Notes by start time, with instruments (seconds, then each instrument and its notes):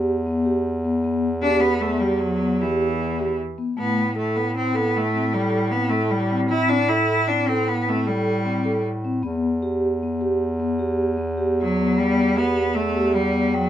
Already playing: bass clarinet E2
0.26 vibraphone B3
0.45 vibraphone G4
0.85 vibraphone B3
1.04 vibraphone B3
1.42 cello D4, vibraphone G4
1.61 cello B3
1.81 cello A3, vibraphone B3
2.00 cello G3, vibraphone G4
2.20 cello F#3
2.40 vibraphone B3
2.61 cello E3, vibraphone G4
3.00 vibraphone B3
3.19 vibraphone G4
3.58 vibraphone B3
3.77 bass clarinet A2, vibraphone A3, cello B3
4.16 cello A3, vibraphone A4
4.36 cello B3
4.54 vibraphone C4, cello C4
4.74 cello B3, vibraphone A4
4.96 cello A3
5.14 vibraphone C4
5.33 cello G3, vibraphone A4
5.71 cello B3, vibraphone C4
5.90 cello A3, vibraphone A4
6.10 cello G3
6.31 vibraphone C4
6.49 vibraphone C4, cello E4
6.69 cello D4
6.89 cello E4, vibraphone A4
7.28 vibraphone C4, cello D4
7.48 cello C4, vibraphone A4
7.68 cello B3
7.87 cello A3, vibraphone C4
8.06 cello G3, vibraphone A4
8.46 vibraphone C4
8.65 vibraphone A4
9.05 vibraphone C4
9.23 bass clarinet E2, vibraphone B3
9.63 vibraphone G4
10.03 vibraphone B3
10.21 vibraphone G4
10.60 vibraphone B3
10.79 vibraphone G4
11.18 vibraphone B3
11.38 vibraphone G4
11.61 cello F#3
11.77 vibraphone B3
11.97 cello G3, vibraphone B3
12.37 cello B3, vibraphone G4
12.75 cello A3, vibraphone B3
12.95 vibraphone G4
13.15 cello G3
13.34 vibraphone B3
13.53 cello F#3, vibraphone G5